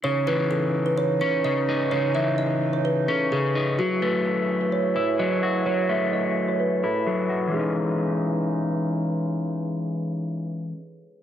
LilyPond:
<<
  \new Staff \with { instrumentName = "Kalimba" } { \time 4/4 \key cis \minor \tempo 4 = 128 cis''8 b'8 a'8. b'16 cis''8 cis''8 dis''8 r8 | cis''8 e''8 dis''8. cis''16 b'8 a'8 gis'8 r8 | fis'8 b'8 a'8. b'16 cis''8 cis''8 dis''8 r8 | cis''8 e''8 dis''8. cis''16 b'8 a'8 a'8 r8 |
gis'2. r4 | r1 | }
  \new Staff \with { instrumentName = "Clean electric guitar" } { \clef bass \time 4/4 \key cis \minor cis8 e2 cis'8 cis8 dis'8 | cis8 e2 cis'8 cis8 dis'8 | fis8 a2 e'8 fis8 fis'8 | fis8 a2 e'8 fis8 fis'8 |
<e gis cis' dis'>1~ | <e gis cis' dis'>1 | }
  \new Staff \with { instrumentName = "Woodwind section" } { \clef bass \time 4/4 \key cis \minor << { <cis, e dis'>1~ | <cis, e dis'>1 | <fis, a e'>1~ | <fis, a e'>1 |
<cis e gis dis'>1~ | <cis e gis dis'>1 | } \\ { cis1~ | cis1~ | cis1~ | cis1 |
r1 | r1 | } >> }
>>